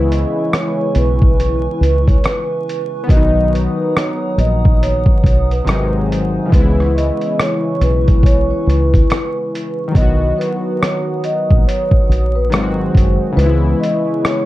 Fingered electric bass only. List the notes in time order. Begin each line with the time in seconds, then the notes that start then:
Already playing: C#2
0.95 B1
1.81 C#2
3.09 B1
4.38 A#1
5.24 B1
5.66 G#1
6.53 C#2
7.81 B1
8.67 C#2
9.95 B1
11.51 A#1
12.09 A#1
12.51 G#1
12.95 F#1
13.37 C#2